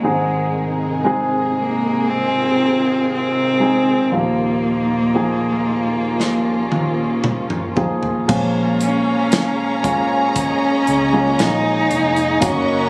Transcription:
Already playing: cello G#3
0.03 grand piano G#2 D#3 G#3 C4 D#4 G#4, string section C3 D#3 G#3 D#4 G#4
1.04 grand piano G#3 C4 D#4 G#4
1.61 cello A#3
2.09 cello C4, string section F4
3.13 cello C4
3.60 grand piano G#3 C4 D#4 G#4
4.11 grand piano D#2 A#2 F3 A#3 D#4 F4, string section A#2 F3 D#4 F4
4.16 cello A#3
5.14 grand piano F3 A#3 D#4 G#4
6.19 string section C#4, snare
6.72 high tom
7.24 mid tom
7.50 mid tom
7.76 grand piano F3 A#3 D#4 G#4, floor tom
8.03 floor tom
8.28 fingered electric bass A#1, grand piano A#2 F3 G#3 A#3 C#4 F4, string section G#4 C#5 F5 A#5, violin section G#4 G#5, kick, crash
8.81 cello C#4, closed hi-hat
9.32 snare, closed hi-hat
9.83 fingered electric bass F2, grand piano G#3 A#3 C#4 F4, kick, closed hi-hat
10.36 cello C#4, string section D#5, kick, closed hi-hat
10.87 fingered electric bass C#2, closed hi-hat
11.13 grand piano G#3 A#3 C#4 F4
11.39 fingered electric bass A#1, cello D#4, snare, closed hi-hat
11.91 fingered electric bass F1, closed hi-hat
12.16 closed hi-hat
12.40 fingered electric bass F#1, grand piano C#3 A#3 C#4 D#4 F#4, violin section A#4 A#5, string section F#5 C#6, kick, closed hi-hat
12.44 cello C#4, string section A#4

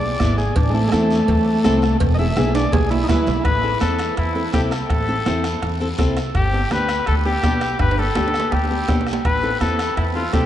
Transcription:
Already playing: upright bass B1, transistor combo organ D5
0.20 upright bass G#1, nylon-string guitar B3 E4 B4, bombo low, bombo rim, high conga, short guiro
0.38 transistor combo organ G#4, short guiro
0.56 upright bass A1, transistor combo organ D4, bombo low, cowbell, high conga, long guiro
0.70 transistor combo organ G#3
0.74 transistor combo organ A3, nylon-string guitar C4 E4 A4
0.88 transistor combo organ G#3
0.92 upright bass E2, transistor combo organ A3, nylon-string guitar C4 E4 A4, bombo rim, high conga, short guiro
1.10 short guiro
1.28 upright bass E2, bombo low, cowbell, high conga, low conga, long guiro
1.64 upright bass C2, nylon-string guitar C4 E4 A4, bombo rim, high conga, short guiro
1.82 bombo rim, short guiro
2.00 upright bass E1, bombo low, cowbell, high conga, long guiro
2.14 transistor combo organ D#5
2.18 nylon-string guitar B3 E4 G#4, transistor combo organ E5
2.36 upright bass B1, nylon-string guitar B3 E4 G#4, bombo rim, high conga, high timbale, short guiro
2.55 transistor combo organ D5, high timbale, short guiro
2.72 upright bass B1, transistor combo organ G#4, bombo low, cowbell, high conga, low conga, low timbale, long guiro
2.90 transistor combo organ E4, high conga, low timbale
3.04 transistor combo organ D#4
3.08 upright bass D2, nylon-string guitar B3 E4 B4, transistor combo organ E4, bombo low, bombo rim, low conga, low timbale, short guiro
3.27 upright bass B1, low conga, low timbale, short guiro
3.44 upright bass A1, trumpet B4, bombo low, bombo rim, high conga, high timbale, long guiro
3.63 nylon-string guitar C4 E4 A4
3.80 upright bass E2, nylon-string guitar C4 E4 C5, trumpet A4, bombo rim, high conga, high timbale, short guiro
3.98 bombo rim, high timbale, short guiro
4.17 upright bass E2, trumpet E4, bombo rim, high conga, high timbale, long guiro
4.35 nylon-string guitar C4 E4 A4
4.53 upright bass C2, nylon-string guitar C4 E4 A4, trumpet G4, bombo low, bombo rim, high conga, high timbale, short guiro
4.71 trumpet A4, bombo rim, high timbale, short guiro
4.90 upright bass A1, bombo low, bombo rim, high conga, high timbale, long guiro
5.08 nylon-string guitar C4 E4 A4
5.26 upright bass E2, nylon-string guitar C4 E4 C5, bombo rim, high conga, high timbale, short guiro
5.44 bombo rim, high timbale, short guiro
5.62 upright bass E2, bombo rim, high conga, high timbale, long guiro
5.80 nylon-string guitar C4 E4 A4
5.98 upright bass C2, nylon-string guitar C4 E4 A4, bombo low, bombo rim, high conga, high timbale, short guiro
6.16 bombo rim, high timbale, short guiro
6.35 upright bass G1, trumpet G4, bombo low, bombo rim, high conga, high timbale, long guiro
6.53 nylon-string guitar B3 D4 G4
6.71 upright bass D2, nylon-string guitar B3 D4 G4, trumpet B4, bombo rim, high conga, high timbale, short guiro
6.89 bombo rim, high timbale, short guiro
7.06 upright bass D2, trumpet A4, bombo rim, high conga, high timbale, long guiro
7.25 nylon-string guitar B3 D4 G4, trumpet G4
7.43 upright bass B1, nylon-string guitar B3 D4 G4, bombo low, bombo rim, high conga, high timbale, short guiro
7.61 bombo rim, high timbale, short guiro
7.79 upright bass G1, trumpet B4, bombo low, bombo rim, high conga, high timbale, long guiro
7.91 high timbale
7.98 nylon-string guitar B3 D4 G4, trumpet A4
8.03 high timbale
8.15 upright bass D2, nylon-string guitar B3 D4 G4, bombo rim, high conga, low timbale, short guiro
8.28 high timbale
8.34 bombo rim, short guiro
8.40 low timbale
8.52 upright bass D2, trumpet G4, bombo rim, high conga, low timbale, long guiro
8.64 low timbale
8.70 nylon-string guitar B3 D4 G4
8.88 upright bass B1, nylon-string guitar B3 D4 G4, bombo low, bombo rim, high conga, low timbale, short guiro
9.01 low timbale
9.07 bombo rim, short guiro
9.13 low timbale
9.25 upright bass A1, trumpet B4, bombo low, bombo rim, high conga, high timbale, long guiro
9.42 nylon-string guitar C4 E4 A4
9.60 upright bass E2, nylon-string guitar C4 E4 B4, trumpet A4, bombo rim, high conga, high timbale, short guiro
9.79 bombo rim, high timbale, short guiro
9.97 upright bass E2, trumpet E4, bombo rim, high conga, high timbale, long guiro
10.15 nylon-string guitar C4 E4 A4, trumpet F4
10.33 upright bass C2, nylon-string guitar C4 E4 A4, trumpet G4, bombo low, bombo rim, high conga, high timbale, short guiro

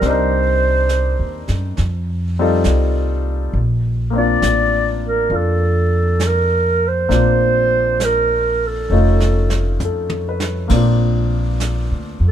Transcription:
0.00 upright bass C2, grand piano G3 C4, brush sweep, snare
0.05 grand piano D4 D#4, clarinet C5
0.10 grand piano A#4
0.89 snare, hi-hat pedal
1.19 upright bass D#2
1.48 upright bass F#2, snare
1.77 upright bass F2, brush sweep, snare
2.39 grand piano G3 C4 D#4 F4 A4
2.64 upright bass C2, snare, hi-hat pedal
3.53 upright bass A#1, brush sweep
4.10 grand piano A#3 C4
4.16 grand piano D4 F4, clarinet D5
4.42 upright bass A1, snare, hi-hat pedal
5.06 clarinet A#4
5.30 upright bass F2, grand piano D4 F4, brush sweep
5.36 clarinet A4
6.20 snare, hi-hat pedal
6.27 clarinet A#4
6.88 clarinet C5
7.08 upright bass A#1, grand piano A#3 C4 D4 F4, brush sweep, snare
8.00 snare, hi-hat pedal
8.05 clarinet A#4
8.67 clarinet A4
8.90 upright bass F1, grand piano A3 C#4 D#4 F4
9.20 snare
9.50 snare
9.80 upright bass F2, floor tom, hi-hat pedal
9.84 grand piano A4
10.10 mid tom
10.29 grand piano B4
10.40 snare
10.68 upright bass A#1, grand piano A#3 C4, brush sweep, kick, snare, ride
10.73 grand piano D4 F4
11.60 snare, hi-hat pedal
11.91 upright bass D2
12.20 upright bass F2
12.28 clarinet A#4

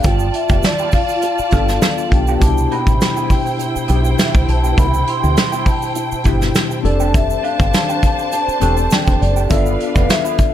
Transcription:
0.03 fingered electric bass G1, clean electric guitar B3 F4 G4, string section F4 D5 A5, vibraphone G5, kick, closed hi-hat, shaker
0.19 shaker
0.34 vibraphone E5, muted clean electric guitar stroke, closed hi-hat
0.49 fingered electric bass F1, clean electric guitar B3 F4 G4, kick, shaker
0.63 vibraphone D5, muted clean electric guitar stroke, snare, closed hi-hat, shaker
0.79 clean electric guitar B3 F4 G4, shaker
0.92 vibraphone F5, muted clean electric guitar stroke, kick, open hi-hat, shaker
1.09 muted clean electric guitar stroke, shaker
1.22 muted clean electric guitar stroke, closed hi-hat, shaker
1.38 muted clean electric guitar stroke, muted fingered electric bass stroke, shaker
1.51 fingered electric bass G1, clean electric guitar B3 F4 G4, tine electric piano B3 D4 F4 A4, kick, closed hi-hat, shaker
1.68 muted clean electric guitar stroke, snare, shaker
1.82 muted clean electric guitar stroke, snare, closed hi-hat, shaker
1.98 muted clean electric guitar stroke, shaker
2.10 fingered electric bass B1, tine electric piano B3 D4 F4 G4, vibraphone G5, kick, closed hi-hat
2.27 clean electric guitar B3 F4 G4, shaker
2.40 fingered electric bass C2, tine electric piano B2 D4 E4 G4, string section E4 C5 G5, vibraphone A5, kick, closed hi-hat, shaker
2.58 shaker
2.71 clean electric guitar B3 E4 G4, vibraphone B5, closed hi-hat
2.87 fingered electric bass A1, kick, shaker
3.01 muted clean electric guitar stroke, snare, closed hi-hat, shaker
3.17 clean electric guitar B3 E4 G4, shaker
3.30 vibraphone G5, muted clean electric guitar stroke, kick, open hi-hat, shaker
3.46 muted clean electric guitar stroke, shaker
3.59 muted clean electric guitar stroke, closed hi-hat, shaker
3.75 muted clean electric guitar stroke, muted fingered electric bass stroke, shaker
3.88 fingered electric bass B1, tine electric piano B2 D4 E4 G4, clean electric guitar B3 E4 G4, closed hi-hat, shaker
4.05 muted clean electric guitar stroke, shaker
4.18 clean electric guitar B3 E4 G4, snare, closed hi-hat, shaker
4.35 fingered electric bass C2, kick, shaker
4.48 fingered electric bass B1, vibraphone A5, muted clean electric guitar stroke, closed hi-hat
4.64 clean electric guitar B3 E4 G4, shaker
4.77 fingered electric bass C2, clean electric guitar B3 E4 G4, vibraphone B5, kick, closed hi-hat, shaker
4.94 shaker
5.07 vibraphone C6, muted clean electric guitar stroke, closed hi-hat
5.23 fingered electric bass D2, clean electric guitar B3 E4 G4, shaker
5.37 muted clean electric guitar stroke, snare, closed hi-hat, shaker
5.52 clean electric guitar B3 E4 G4, shaker
5.61 vibraphone B5
5.66 vibraphone A5, muted clean electric guitar stroke, kick, open hi-hat, shaker
5.82 muted clean electric guitar stroke, shaker
5.95 muted clean electric guitar stroke, closed hi-hat, shaker
6.12 muted clean electric guitar stroke, muted fingered electric bass stroke, shaker
6.24 fingered electric bass G1, tine electric piano B2 D4 E4 G4, clean electric guitar B3 E4 G4, kick, closed hi-hat, shaker
6.41 muted clean electric guitar stroke, snare, shaker
6.55 muted clean electric guitar stroke, snare, closed hi-hat, shaker
6.71 muted clean electric guitar stroke, shaker
6.83 fingered electric bass F1, tine electric piano C4 D4 G4 A4, string section D4 C5 A5, vibraphone D5, closed hi-hat
7.00 clean electric guitar A3 D4 G4, shaker
7.14 vibraphone E5, kick, closed hi-hat, shaker
7.30 shaker
7.43 clean electric guitar A3 D4 G4, vibraphone F5, closed hi-hat
7.60 fingered electric bass G1, kick, shaker
7.74 muted clean electric guitar stroke, snare, closed hi-hat, shaker
7.89 clean electric guitar A3 D4 G4, shaker
8.03 muted clean electric guitar stroke, kick, closed hi-hat, shaker
8.19 muted clean electric guitar stroke, shaker
8.32 vibraphone A5, muted clean electric guitar stroke, closed hi-hat, shaker
8.48 muted fingered electric bass stroke, muted clean electric guitar stroke, shaker
8.60 fingered electric bass E1, clean electric guitar A3 D4 G4, tine electric piano C4 D4 G4 A4, closed hi-hat, shaker
8.77 muted clean electric guitar stroke, shaker
8.91 clean electric guitar A3 D4 G4, vibraphone G5, snare, closed hi-hat, shaker
9.07 fingered electric bass F1, kick, shaker
9.20 fingered electric bass F#1, vibraphone D5, muted clean electric guitar stroke, closed hi-hat
9.36 clean electric guitar A3 D4 G4, shaker
9.49 fingered electric bass G1, clean electric guitar F3 B3 E4, tine electric piano B3 D4 F4 A4, string section D4 B4 F5, kick, closed hi-hat, shaker
9.66 shaker
9.79 muted clean electric guitar stroke, closed hi-hat
9.95 fingered electric bass F1, clean electric guitar F3 B3 E4, kick, shaker
10.04 vibraphone F5
10.08 vibraphone E5, muted clean electric guitar stroke, snare, closed hi-hat, shaker
10.24 clean electric guitar F3 B3 E4, shaker
10.38 muted clean electric guitar stroke, kick, closed hi-hat, shaker

